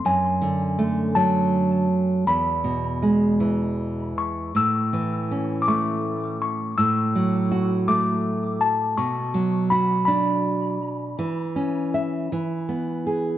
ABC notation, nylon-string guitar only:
X:1
M:6/8
L:1/8
Q:3/8=54
K:Dlyd
V:1 name="Nylon-string guitar" clef=bass
F,, D, A, F,3 | E,, B,, G, E,3 | A,, E, C A,3 | A,, F, F A,3 |
B,, F, F D3 | E, C e E, B, G |]